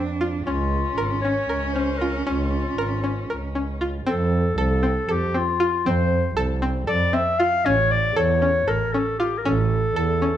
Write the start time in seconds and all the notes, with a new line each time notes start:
Already playing: F2 C4 D4
0.21 F4
0.46 C#2 C#4 F4
0.98 G#1 A#4
1.22 C#4 C#5
1.49 C#2 A#4
1.73 C#4 C5
1.98 F4 A#4
2.25 C#2 C#4 F4
2.78 G#1 A#4
3.04 C#4
3.30 C#2 A#4
3.55 C#4
3.81 F4
4.07 F2 C4 A4
4.58 C2 A4
4.83 C4
5.09 F2 G4 A4
5.34 C4 F4
5.60 F4
5.86 F2 C4 C5
6.37 C2 A4
6.62 C4
6.87 F2 A4 D5
7.13 C4 E5
7.39 F4 F5
7.65 A1 C#4 C#5
7.92 D5
8.16 E2 A4 C#5
8.42 C#4
8.68 A1 A4 A#4
8.93 C#4 A4
9.19 F4 G4
9.38 A#4
9.45 A1 C#4 A4
9.96 E2 A4
10.22 C#4